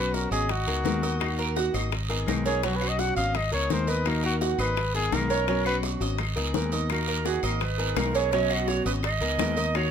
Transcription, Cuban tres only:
0, 0, Header, 1, 2, 480
1, 0, Start_track
1, 0, Tempo, 355872
1, 1629, Time_signature, 4, 2, 24, 8
1, 13364, End_track
2, 0, Start_track
2, 0, Title_t, "Cuban tres"
2, 0, Program_c, 0, 25
2, 0, Note_on_c, 0, 66, 68
2, 410, Note_off_c, 0, 66, 0
2, 431, Note_on_c, 0, 75, 75
2, 896, Note_off_c, 0, 75, 0
2, 912, Note_on_c, 0, 68, 74
2, 1377, Note_off_c, 0, 68, 0
2, 1391, Note_on_c, 0, 75, 72
2, 1856, Note_off_c, 0, 75, 0
2, 1869, Note_on_c, 0, 70, 70
2, 2103, Note_off_c, 0, 70, 0
2, 2108, Note_on_c, 0, 66, 67
2, 2342, Note_off_c, 0, 66, 0
2, 2349, Note_on_c, 0, 75, 73
2, 2816, Note_off_c, 0, 75, 0
2, 2830, Note_on_c, 0, 68, 78
2, 3296, Note_off_c, 0, 68, 0
2, 3312, Note_on_c, 0, 61, 85
2, 3540, Note_off_c, 0, 61, 0
2, 3556, Note_on_c, 0, 61, 76
2, 3787, Note_off_c, 0, 61, 0
2, 3796, Note_on_c, 0, 66, 71
2, 4260, Note_off_c, 0, 66, 0
2, 4282, Note_on_c, 0, 75, 68
2, 4743, Note_off_c, 0, 75, 0
2, 4754, Note_on_c, 0, 68, 74
2, 5219, Note_off_c, 0, 68, 0
2, 5234, Note_on_c, 0, 75, 75
2, 5699, Note_off_c, 0, 75, 0
2, 5711, Note_on_c, 0, 70, 70
2, 5945, Note_off_c, 0, 70, 0
2, 5950, Note_on_c, 0, 66, 66
2, 6184, Note_off_c, 0, 66, 0
2, 6194, Note_on_c, 0, 75, 72
2, 6659, Note_off_c, 0, 75, 0
2, 6671, Note_on_c, 0, 68, 79
2, 7137, Note_off_c, 0, 68, 0
2, 7149, Note_on_c, 0, 61, 82
2, 7375, Note_off_c, 0, 61, 0
2, 7391, Note_on_c, 0, 61, 75
2, 7624, Note_off_c, 0, 61, 0
2, 7633, Note_on_c, 0, 66, 69
2, 8098, Note_off_c, 0, 66, 0
2, 8114, Note_on_c, 0, 75, 73
2, 8578, Note_off_c, 0, 75, 0
2, 8587, Note_on_c, 0, 68, 75
2, 9054, Note_off_c, 0, 68, 0
2, 9067, Note_on_c, 0, 75, 70
2, 9301, Note_off_c, 0, 75, 0
2, 9547, Note_on_c, 0, 70, 72
2, 9781, Note_off_c, 0, 70, 0
2, 9788, Note_on_c, 0, 66, 63
2, 10022, Note_off_c, 0, 66, 0
2, 10029, Note_on_c, 0, 75, 76
2, 10495, Note_off_c, 0, 75, 0
2, 10510, Note_on_c, 0, 68, 77
2, 10975, Note_off_c, 0, 68, 0
2, 10993, Note_on_c, 0, 61, 85
2, 11217, Note_off_c, 0, 61, 0
2, 11233, Note_on_c, 0, 61, 83
2, 11464, Note_off_c, 0, 61, 0
2, 11469, Note_on_c, 0, 66, 77
2, 11934, Note_off_c, 0, 66, 0
2, 11950, Note_on_c, 0, 75, 72
2, 12415, Note_off_c, 0, 75, 0
2, 12428, Note_on_c, 0, 68, 74
2, 12893, Note_off_c, 0, 68, 0
2, 12913, Note_on_c, 0, 75, 76
2, 13364, Note_off_c, 0, 75, 0
2, 13364, End_track
0, 0, End_of_file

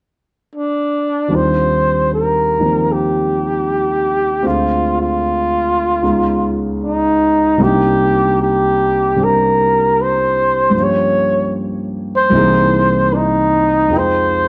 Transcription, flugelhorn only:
0, 0, Header, 1, 2, 480
1, 0, Start_track
1, 0, Key_signature, -3, "major"
1, 0, Tempo, 788436
1, 790, Time_signature, 4, 2, 24, 8
1, 8815, End_track
2, 0, Start_track
2, 0, Title_t, "Flugelhorn"
2, 0, Program_c, 0, 56
2, 336, Note_on_c, 0, 62, 66
2, 822, Note_on_c, 0, 72, 67
2, 831, Note_off_c, 0, 62, 0
2, 1287, Note_off_c, 0, 72, 0
2, 1302, Note_on_c, 0, 70, 67
2, 1778, Note_on_c, 0, 67, 66
2, 1787, Note_off_c, 0, 70, 0
2, 2722, Note_on_c, 0, 65, 71
2, 2731, Note_off_c, 0, 67, 0
2, 3044, Note_off_c, 0, 65, 0
2, 3048, Note_on_c, 0, 65, 72
2, 4024, Note_off_c, 0, 65, 0
2, 4160, Note_on_c, 0, 63, 69
2, 4641, Note_on_c, 0, 67, 75
2, 4650, Note_off_c, 0, 63, 0
2, 5111, Note_off_c, 0, 67, 0
2, 5125, Note_on_c, 0, 67, 75
2, 5623, Note_on_c, 0, 70, 74
2, 5632, Note_off_c, 0, 67, 0
2, 6097, Note_on_c, 0, 72, 80
2, 6106, Note_off_c, 0, 70, 0
2, 6594, Note_on_c, 0, 73, 78
2, 6603, Note_off_c, 0, 72, 0
2, 7046, Note_off_c, 0, 73, 0
2, 7403, Note_on_c, 0, 72, 86
2, 7992, Note_on_c, 0, 62, 53
2, 8002, Note_off_c, 0, 72, 0
2, 8014, Note_on_c, 0, 63, 70
2, 8023, Note_off_c, 0, 62, 0
2, 8509, Note_on_c, 0, 72, 82
2, 8518, Note_off_c, 0, 63, 0
2, 8815, Note_off_c, 0, 72, 0
2, 8815, End_track
0, 0, End_of_file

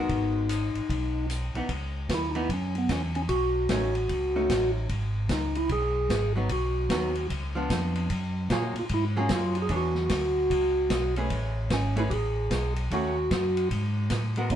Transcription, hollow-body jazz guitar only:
0, 0, Header, 1, 2, 480
1, 0, Start_track
1, 0, Tempo, 400534
1, 101, Time_signature, 4, 2, 24, 8
1, 17442, End_track
2, 0, Start_track
2, 0, Title_t, "Hollow-body jazz guitar"
2, 0, Program_c, 0, 26
2, 0, Note_on_c, 0, 56, 52
2, 0, Note_on_c, 0, 59, 55
2, 0, Note_on_c, 0, 66, 60
2, 0, Note_on_c, 0, 70, 62
2, 564, Note_off_c, 0, 56, 0
2, 567, Note_off_c, 0, 59, 0
2, 568, Note_off_c, 0, 66, 0
2, 570, Note_off_c, 0, 70, 0
2, 1864, Note_on_c, 0, 52, 45
2, 1878, Note_on_c, 0, 59, 61
2, 1886, Note_on_c, 0, 63, 52
2, 2013, Note_off_c, 0, 52, 0
2, 2019, Note_off_c, 0, 59, 0
2, 2023, Note_off_c, 0, 63, 0
2, 2817, Note_on_c, 0, 52, 62
2, 2821, Note_on_c, 0, 59, 70
2, 2824, Note_on_c, 0, 63, 72
2, 2970, Note_off_c, 0, 52, 0
2, 2972, Note_off_c, 0, 59, 0
2, 2974, Note_off_c, 0, 63, 0
2, 4429, Note_on_c, 0, 57, 55
2, 4442, Note_on_c, 0, 61, 61
2, 4451, Note_on_c, 0, 63, 62
2, 4707, Note_off_c, 0, 57, 0
2, 4713, Note_off_c, 0, 61, 0
2, 4718, Note_off_c, 0, 63, 0
2, 5222, Note_on_c, 0, 57, 51
2, 5227, Note_on_c, 0, 61, 55
2, 5227, Note_on_c, 0, 63, 54
2, 5837, Note_off_c, 0, 57, 0
2, 5840, Note_off_c, 0, 61, 0
2, 5840, Note_off_c, 0, 63, 0
2, 7618, Note_on_c, 0, 54, 55
2, 7628, Note_on_c, 0, 59, 60
2, 7641, Note_on_c, 0, 63, 66
2, 7773, Note_off_c, 0, 54, 0
2, 7777, Note_off_c, 0, 59, 0
2, 7784, Note_off_c, 0, 63, 0
2, 8274, Note_on_c, 0, 54, 52
2, 8279, Note_on_c, 0, 59, 56
2, 8287, Note_on_c, 0, 63, 56
2, 8550, Note_off_c, 0, 54, 0
2, 8553, Note_off_c, 0, 59, 0
2, 8557, Note_off_c, 0, 63, 0
2, 9052, Note_on_c, 0, 53, 67
2, 9066, Note_on_c, 0, 59, 57
2, 9070, Note_on_c, 0, 62, 71
2, 9672, Note_off_c, 0, 53, 0
2, 9679, Note_off_c, 0, 59, 0
2, 9682, Note_off_c, 0, 62, 0
2, 10196, Note_on_c, 0, 54, 52
2, 10208, Note_on_c, 0, 65, 56
2, 10210, Note_on_c, 0, 58, 52
2, 10212, Note_on_c, 0, 68, 61
2, 10471, Note_off_c, 0, 54, 0
2, 10477, Note_off_c, 0, 65, 0
2, 10478, Note_off_c, 0, 58, 0
2, 10479, Note_off_c, 0, 68, 0
2, 10983, Note_on_c, 0, 54, 59
2, 10984, Note_on_c, 0, 58, 60
2, 10990, Note_on_c, 0, 65, 61
2, 10993, Note_on_c, 0, 68, 67
2, 11597, Note_off_c, 0, 54, 0
2, 11598, Note_off_c, 0, 58, 0
2, 11601, Note_off_c, 0, 65, 0
2, 11602, Note_off_c, 0, 68, 0
2, 11622, Note_on_c, 0, 52, 51
2, 11624, Note_on_c, 0, 62, 61
2, 11634, Note_on_c, 0, 68, 53
2, 11641, Note_on_c, 0, 73, 51
2, 11903, Note_off_c, 0, 52, 0
2, 11904, Note_off_c, 0, 62, 0
2, 11909, Note_off_c, 0, 68, 0
2, 11913, Note_off_c, 0, 73, 0
2, 13391, Note_on_c, 0, 61, 56
2, 13392, Note_on_c, 0, 57, 49
2, 13401, Note_on_c, 0, 68, 53
2, 13407, Note_on_c, 0, 71, 56
2, 14000, Note_off_c, 0, 61, 0
2, 14001, Note_off_c, 0, 57, 0
2, 14005, Note_off_c, 0, 68, 0
2, 14008, Note_off_c, 0, 71, 0
2, 14336, Note_on_c, 0, 57, 57
2, 14342, Note_on_c, 0, 61, 60
2, 14352, Note_on_c, 0, 68, 65
2, 14355, Note_on_c, 0, 71, 69
2, 14489, Note_off_c, 0, 57, 0
2, 14493, Note_off_c, 0, 61, 0
2, 14497, Note_off_c, 0, 68, 0
2, 14499, Note_off_c, 0, 71, 0
2, 15481, Note_on_c, 0, 51, 60
2, 15485, Note_on_c, 0, 57, 57
2, 15488, Note_on_c, 0, 61, 68
2, 15498, Note_on_c, 0, 66, 65
2, 15751, Note_off_c, 0, 51, 0
2, 15753, Note_off_c, 0, 57, 0
2, 15755, Note_off_c, 0, 61, 0
2, 15760, Note_off_c, 0, 66, 0
2, 17225, Note_on_c, 0, 56, 55
2, 17231, Note_on_c, 0, 59, 53
2, 17237, Note_on_c, 0, 66, 55
2, 17237, Note_on_c, 0, 70, 54
2, 17373, Note_off_c, 0, 56, 0
2, 17376, Note_off_c, 0, 59, 0
2, 17379, Note_off_c, 0, 66, 0
2, 17379, Note_off_c, 0, 70, 0
2, 17442, End_track
0, 0, End_of_file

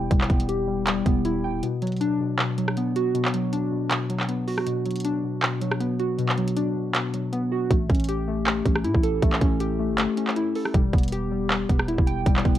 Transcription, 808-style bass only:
0, 0, Header, 1, 2, 480
1, 0, Start_track
1, 0, Key_signature, 2, "minor"
1, 0, Tempo, 379747
1, 139, Time_signature, 4, 2, 24, 8
1, 15909, End_track
2, 0, Start_track
2, 0, Title_t, "808-style bass"
2, 0, Program_c, 0, 38
2, 139, Note_on_c, 0, 28, 112
2, 369, Note_off_c, 0, 28, 0
2, 379, Note_on_c, 0, 28, 105
2, 1301, Note_off_c, 0, 28, 0
2, 1340, Note_on_c, 0, 28, 103
2, 1819, Note_on_c, 0, 26, 95
2, 1838, Note_off_c, 0, 28, 0
2, 1946, Note_on_c, 0, 28, 104
2, 1965, Note_off_c, 0, 26, 0
2, 2053, Note_off_c, 0, 28, 0
2, 9739, Note_on_c, 0, 33, 112
2, 9970, Note_off_c, 0, 33, 0
2, 9979, Note_on_c, 0, 33, 105
2, 10901, Note_off_c, 0, 33, 0
2, 10939, Note_on_c, 0, 33, 105
2, 11179, Note_on_c, 0, 45, 93
2, 11198, Note_off_c, 0, 33, 0
2, 11300, Note_off_c, 0, 45, 0
2, 11306, Note_on_c, 0, 33, 105
2, 11645, Note_off_c, 0, 33, 0
2, 11659, Note_on_c, 0, 33, 113
2, 11890, Note_off_c, 0, 33, 0
2, 11899, Note_on_c, 0, 33, 109
2, 12506, Note_on_c, 0, 31, 99
2, 12525, Note_off_c, 0, 33, 0
2, 12734, Note_off_c, 0, 31, 0
2, 13579, Note_on_c, 0, 28, 113
2, 13810, Note_off_c, 0, 28, 0
2, 13819, Note_on_c, 0, 28, 104
2, 14741, Note_off_c, 0, 28, 0
2, 14780, Note_on_c, 0, 28, 102
2, 15019, Note_on_c, 0, 26, 97
2, 15038, Note_off_c, 0, 28, 0
2, 15140, Note_off_c, 0, 26, 0
2, 15147, Note_on_c, 0, 28, 103
2, 15485, Note_off_c, 0, 28, 0
2, 15499, Note_on_c, 0, 28, 116
2, 15730, Note_off_c, 0, 28, 0
2, 15739, Note_on_c, 0, 28, 104
2, 15909, Note_off_c, 0, 28, 0
2, 15909, End_track
0, 0, End_of_file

